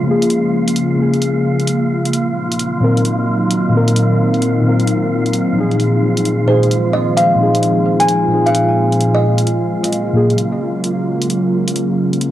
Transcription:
0.00 2.10 C#3 medium
0.00 0.93 C#3 medium
0.00 2.10 F3 medium
0.00 2.10 G#3 medium
0.00 5.76 A#3 medium
0.00 2.10 F4 medium
0.00 12.31 F4 medium
0.00 12.31 F5 medium
0.07 0.97 A#3 medium
0.07 0.99 G#4 medium
0.22 closed hi-hat soft
0.30 closed hi-hat soft
0.67 closed hi-hat soft
0.76 closed hi-hat medium
0.94 2.10 C#3 medium
0.94 2.12 A#3 medium
1.02 2.14 G#4 medium
1.14 closed hi-hat soft
1.22 closed hi-hat soft
1.60 closed hi-hat soft
1.67 closed hi-hat medium
2.05 closed hi-hat medium
2.12 9.42 A#2 medium
2.12 9.42 D#3 medium
2.12 5.75 F#3 medium
2.12 9.42 C4 medium
2.12 5.76 D#4 medium
2.12 closed hi-hat medium
2.52 closed hi-hat soft
2.59 closed hi-hat medium
2.80 3.01 A#2 medium
2.80 3.02 D#3 medium
2.80 3.02 C4 medium
2.80 3.03 A#4 medium
2.97 closed hi-hat soft
3.05 closed hi-hat soft
3.51 closed hi-hat medium
3.69 4.60 A#2 medium
3.69 4.62 D#3 medium
3.74 4.64 C4 medium
3.74 4.65 A#4 medium
3.88 closed hi-hat medium
3.96 closed hi-hat soft
4.34 closed hi-hat soft
4.42 closed hi-hat soft
4.61 5.51 A#2 medium
4.61 5.54 D#3 medium
4.67 5.56 C4 medium
4.67 5.57 A#4 medium
4.80 closed hi-hat soft
4.87 closed hi-hat soft
5.26 closed hi-hat soft
5.33 closed hi-hat soft
5.52 6.44 A#2 medium
5.52 6.46 F3 medium
5.58 6.47 D#4 medium
5.58 6.48 G#4 medium
5.71 closed hi-hat soft
5.79 9.42 F3 medium
5.79 12.31 G#3 medium
5.79 12.31 F4 medium
5.79 closed hi-hat soft
6.17 closed hi-hat soft
6.25 closed hi-hat soft
6.46 6.67 A#2 medium
6.46 6.68 F3 medium
6.46 6.69 D#4 medium
6.46 6.72 C5 medium
6.50 6.69 G#4 medium
6.63 closed hi-hat soft
6.71 closed hi-hat soft
6.93 7.18 D#5 medium
7.17 7.41 F5 medium
7.17 closed hi-hat soft
7.35 8.26 A#2 medium
7.35 8.28 F3 medium
7.40 8.30 D#4 medium
7.40 8.31 G#4 medium
7.55 closed hi-hat soft
7.63 closed hi-hat soft
8.00 8.43 G#5 medium
8.00 closed hi-hat soft
8.09 closed hi-hat soft
8.27 9.43 A#2 medium
8.27 9.44 F3 medium
8.32 9.45 D#4 medium
8.32 9.47 G#4 medium
8.46 8.70 F5 medium
8.46 closed hi-hat soft
8.55 closed hi-hat soft
8.92 closed hi-hat soft
9.00 closed hi-hat soft
9.14 9.46 D#5 medium
9.38 closed hi-hat soft
9.47 12.31 C#3 medium
9.47 12.31 F#3 medium
9.47 12.31 A#3 medium
9.47 closed hi-hat soft
9.84 closed hi-hat soft
9.92 closed hi-hat medium
10.13 10.34 A#2 medium
10.13 10.34 F#3 medium
10.13 10.35 A#3 medium
10.13 10.36 F4 medium
10.17 10.36 G#4 medium
10.30 closed hi-hat soft
10.38 closed hi-hat soft
10.84 closed hi-hat soft
11.22 closed hi-hat soft
11.30 closed hi-hat soft
11.68 closed hi-hat soft
11.76 closed hi-hat medium
12.13 closed hi-hat soft
12.21 closed hi-hat medium

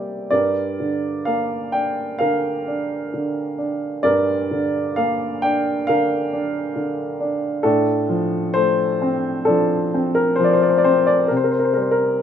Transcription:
0.00 0.27 C3 medium
0.00 0.34 G3 soft
0.00 0.34 A#3 soft
0.00 0.28 D5 soft
0.00 0.34 E5 soft
0.00 0.34 G5 soft
0.31 4.01 G2 soft
0.31 2.18 A#4 soft
0.31 1.30 D5 medium
0.80 2.19 D3 soft
1.25 3.09 A#3 soft
1.25 1.75 F5 medium
1.72 2.66 D4 soft
1.72 2.22 G5 medium
2.19 3.12 D3 soft
2.19 4.01 A#4 medium
2.19 4.00 F5 medium
2.68 3.57 D4 soft
3.14 4.50 D3 soft
3.58 5.40 D4 soft
4.03 7.61 G2 soft
4.03 5.85 A#4 medium
4.03 4.93 D5 medium
4.51 5.87 D3 soft
4.96 6.73 A#3 soft
4.96 5.40 F5 medium
5.42 6.31 D4 soft
5.42 5.85 G5 medium
5.87 6.74 D3 soft
5.87 7.61 A#4 medium
5.87 7.60 F5 medium
6.33 7.19 D4 soft
6.76 7.62 D3 soft
7.21 7.63 D4 soft
7.63 11.25 A2 medium
7.63 9.44 D4 medium
7.63 8.51 A4 medium
8.09 9.47 F3 soft
8.54 10.35 A3 soft
8.54 9.43 C5 medium
9.02 9.93 C4 medium
9.45 10.38 F3 medium
9.45 11.25 D4 medium
9.45 10.17 A4 medium
9.94 10.83 C4 medium
10.15 10.39 A#4 medium
10.36 11.27 F3 soft
10.36 10.45 C5 medium
10.44 10.53 D5 medium
10.53 10.61 C5 medium
10.62 10.70 D5 medium
10.69 10.77 C5 medium
10.78 10.85 D5 medium
10.84 11.29 C4 soft
10.84 11.07 C5 medium
11.07 11.30 D5 medium
11.28 12.22 C3 medium
11.28 11.37 A#4 medium
11.36 11.45 C5 medium
11.44 11.53 A#4 medium
11.51 11.60 C5 medium
11.59 11.68 A#4 medium
11.64 11.75 C5 medium
11.74 12.22 G3 soft
11.74 11.83 A#4 medium
11.81 11.91 C5 soft
11.91 12.19 A#4 medium

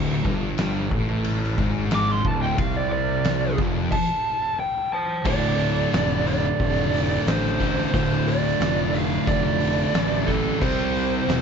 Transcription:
0.00 0.22 D1 loud
0.00 0.24 D2 loud
0.00 0.21 D6 loud
0.25 0.88 G1 loud
0.25 0.91 G2 loud
0.25 kick loud
0.58 snare loud
0.58 ride bell medium
0.91 1.55 A1 loud
0.91 1.58 A2 loud
0.91 kick loud
1.24 ride bell medium
1.43 snare soft
1.58 2.21 G#1 loud
1.58 2.24 G#2 loud
1.58 kick loud
1.91 snare loud
1.91 ride bell medium
1.95 2.12 D6 loud
2.12 2.27 C6 loud
2.25 2.57 D1 medium
2.25 2.58 D2 loud
2.25 2.42 A5 medium
2.25 kick loud
2.42 2.58 G5 medium
2.58 3.55 C2 loud
2.58 3.58 C3 loud
2.58 2.77 F5 medium
2.58 kick loud
2.58 ride bell medium
2.77 2.91 D5 medium
2.92 3.57 D5 loud
3.25 snare loud
3.25 ride bell medium
3.58 3.90 F1 medium
3.58 3.91 F2 loud
3.58 kick loud
3.92 4.57 A5 loud
3.92 kick loud
3.92 crash loud
4.60 4.92 G5 medium
4.93 5.25 C5 loud
4.93 5.26 A5 loud
5.25 5.83 D1 loud
5.25 6.91 D2 medium
5.25 6.92 A2 medium
5.25 6.92 D3 loud
5.25 6.23 D5 loud
5.25 kick loud
5.25 crash loud
5.59 closed hi-hat medium
5.93 6.50 F1 loud
5.93 snare loud
5.93 closed hi-hat loud
6.27 7.27 D5 loud
6.27 closed hi-hat loud
6.59 7.17 F1 medium
6.59 kick loud
6.59 closed hi-hat loud
6.77 closed hi-hat soft
6.93 7.25 D2 medium
6.93 7.25 A2 medium
6.93 7.25 D3 loud
6.93 closed hi-hat medium
7.11 closed hi-hat medium
7.25 7.83 A1 medium
7.25 7.91 D2 medium
7.25 7.92 A2 medium
7.25 7.93 D3 medium
7.25 7.93 C5 loud
7.25 snare loud
7.25 closed hi-hat loud
7.45 snare soft
7.45 closed hi-hat soft
7.58 7.89 D2 medium
7.58 7.91 A2 medium
7.58 7.91 D3 medium
7.58 kick medium
7.58 closed hi-hat medium
7.78 closed hi-hat soft
7.92 8.51 D1 loud
7.92 9.58 D2 medium
7.92 9.59 A2 medium
7.92 9.59 D3 loud
7.92 8.28 C5 loud
7.92 kick loud
7.92 closed hi-hat loud
8.27 8.96 D5 loud
8.27 closed hi-hat medium
8.45 closed hi-hat soft
8.60 9.17 F1 loud
8.60 snare loud
8.60 closed hi-hat loud
8.94 9.25 F5 loud
8.94 closed hi-hat medium
9.27 9.84 F1 loud
9.27 10.30 D5 loud
9.27 kick loud
9.27 closed hi-hat loud
9.60 9.93 D2 medium
9.60 9.92 A2 medium
9.60 9.92 D3 medium
9.60 closed hi-hat medium
9.77 closed hi-hat soft
9.94 10.51 A1 loud
9.94 10.59 D2 medium
9.94 10.59 A2 medium
9.94 10.60 D3 medium
9.94 snare loud
9.94 closed hi-hat loud
10.12 closed hi-hat soft
10.25 10.59 D2 medium
10.25 10.58 A2 medium
10.25 10.58 D3 medium
10.25 10.61 A4 medium
10.25 kick medium
10.25 closed hi-hat medium
10.60 11.18 C2 loud
10.60 11.42 C3 medium
10.60 11.42 G3 medium
10.60 11.42 C4 loud
10.60 11.42 C5 loud
10.60 kick loud
10.60 crash loud
10.96 closed hi-hat medium
11.28 11.42 E1 medium
11.28 snare loud
11.28 closed hi-hat loud

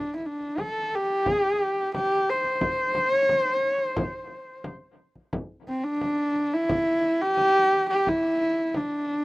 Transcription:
0.00 0.15 D4 medium
0.16 0.27 E4 medium
0.26 0.61 D4 medium
0.41 frame drum soft
0.58 0.96 A4 medium
0.58 frame drum medium
0.93 1.95 G4 loud
0.93 frame drum soft
1.26 frame drum medium
1.95 2.31 G4 loud
1.95 frame drum medium
2.29 3.13 C5 medium
2.44 frame drum soft
2.61 frame drum medium
2.95 frame drum medium
3.12 3.36 C#5 medium
3.12 frame drum soft
3.29 frame drum medium
3.36 3.60 C5 medium
3.60 3.83 C#5 medium
3.60 frame drum soft
3.83 4.67 C5 medium
3.96 frame drum medium
4.64 frame drum medium
5.15 frame drum soft
5.33 frame drum medium
5.67 5.86 C4 medium
5.67 frame drum soft
5.84 6.55 D4 loud
6.01 frame drum medium
6.35 frame drum soft
6.54 7.23 E4 loud
6.69 frame drum medium
7.22 7.89 G4 loud
7.37 frame drum medium
7.72 frame drum soft
7.90 8.10 G4 loud
8.07 8.77 E4 loud
8.07 frame drum medium
8.41 frame drum soft
8.74 9.24 D4 medium
8.74 frame drum medium

